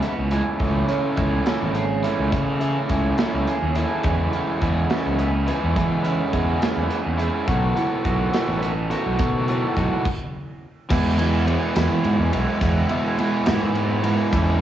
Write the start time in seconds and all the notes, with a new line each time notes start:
Already playing: C#3 E3 G#3 B3 C#4 E4
0.02 B4, closed hi-hat
0.18 C#2
0.31 E3 G#3 C#4 E4, closed hi-hat
0.60 C#2 C#3 E3 A3 C#4 E4, kick, closed hi-hat
0.88 E3 A3 C#4 E4, closed hi-hat
1.16 C#2 E3 A3 C#4 E4, kick, closed hi-hat
1.46 E3 A3 C#4 E4, snare, closed hi-hat
1.62 G#1
1.75 G#4, closed hi-hat
2.03 E3 A3 C#4 E4, closed hi-hat
2.18 C#2
2.32 C#3 E3 A3 C#4 E4, kick, closed hi-hat
2.60 E3 A3 C#4 E4, closed hi-hat
2.89 C#2 E3 A3 C#4 E4, kick, closed hi-hat
3.18 E3 A3 C#4 E4, snare, closed hi-hat
3.34 C#2
3.48 G#4, closed hi-hat
3.62 D#2
3.75 E3 A3 C#4 E4, closed hi-hat
4.04 E2 E3 G#3 B3 E4 G#4 C#5 E5 B5, kick, closed hi-hat
4.33 E3 G#3 B3 C#4 E4, closed hi-hat
4.61 E2 E3 G#3 B3 E4 G#4, kick, closed hi-hat
4.90 E3 G#3 B3 C#4 E4, snare, closed hi-hat
5.06 C#2
5.19 B4, closed hi-hat
5.47 E3 G#3 B3 E4 G#4, closed hi-hat
5.63 E2
5.76 E3 G#3 B3 E4, kick, closed hi-hat
6.03 E3 G#3 B3 C#4 E4, closed hi-hat
6.32 E2 E3 G#3 B3 E4 G#4, kick, closed hi-hat
6.61 E3 G#3 B3 C#4 E4, snare, closed hi-hat
6.77 E2
6.90 B4, closed hi-hat
7.06 E2
7.18 E3 G#3 B3 E4 G#4, closed hi-hat
7.47 B1 B2 D#3 A3 B3 F#4 A4 F#5 B5, kick, closed hi-hat
7.76 D#3 A3 B3 E4 F#4, closed hi-hat
8.05 B1 D#3 A3 B3 F#4, kick, closed hi-hat
8.33 D#3 A3 B3 E4 F#4, snare, closed hi-hat
8.48 A1
8.62 B4, closed hi-hat
8.90 D#3 A3 B3 F#4, closed hi-hat
9.06 B1
9.19 B2 D#3 A3 B3 F#4, kick, closed hi-hat
9.48 D#3 A3 B3 E4 F#4, closed hi-hat
9.77 B1 D#3 A3 B3 F#4, kick, closed hi-hat
10.05 kick, crash
10.90 E2 B2 E3 G#3 B3 E4, kick, crash, tambourine
11.05 tambourine
11.18 E2 B2 E3 G#3 B3 E4, ride
11.34 tambourine
11.46 E2 B2 E3 G#3 B3 E4, ride
11.75 E2 B2 E3 G#3 B3 E4, snare, ride, tambourine
11.91 E3
12.04 G#2, ride, tambourine
12.19 E2
12.33 B1 E2 B2 E3 G#3 B3 E4, ride
12.48 tambourine
12.61 E2 B2 E3 G#3 B3 E4, kick, ride, tambourine
12.77 tambourine
12.89 E2 B2 E3 G#3 B3 E4, ride
13.07 tambourine
13.19 E2 B2 E3 G#3 B3 E4, ride
13.46 E2 G#2 B2 E3 G#3 B3 E4, snare, ride, tambourine
13.63 G#2
13.75 ride, tambourine
14.03 E2 B2 E3 G#3 B3 E4, ride
14.32 E2 E3 G#3 C#4 E4, kick, ride, tambourine
14.48 tambourine